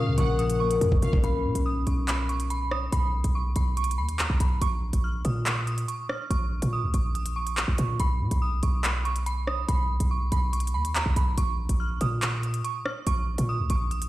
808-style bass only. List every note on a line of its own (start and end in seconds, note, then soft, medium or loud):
0.07 0.17 C#2 loud
0.18 0.79 A#1 loud
0.81 1.02 F2 loud
1.02 1.23 A#2 loud
1.23 1.46 B1 loud
1.45 1.55 B2 loud
1.55 1.86 B1 loud
1.87 2.89 B1 loud
2.92 3.23 B1 loud
3.24 3.55 B1 loud
3.56 4.00 B1 loud
3.98 4.28 D#2 loud
4.30 4.40 B1 loud
4.40 4.61 B1 loud
4.61 4.92 A#1 loud
4.93 5.24 A#1 loud
5.25 5.86 A#2 loud
6.31 6.61 A#1 loud
6.62 6.85 A#2 loud
6.83 6.93 C#2 loud
6.94 7.65 A#1 loud
7.68 7.78 A#1 loud
7.79 7.99 A#2 loud
8.00 8.22 B1 loud
8.21 8.31 B2 loud
8.31 8.62 B1 loud
8.63 9.65 B1 loud
9.69 9.99 B1 loud
10.00 10.31 B1 loud
10.32 10.76 B1 loud
10.74 11.04 D#2 loud
11.06 11.16 B1 loud
11.16 11.37 B1 loud
11.38 11.68 A#1 loud
11.69 12.00 A#1 loud
12.01 12.62 A#2 loud
13.07 13.37 A#1 loud
13.38 13.61 A#2 loud
13.59 13.69 C#2 loud
13.70 14.09 A#1 loud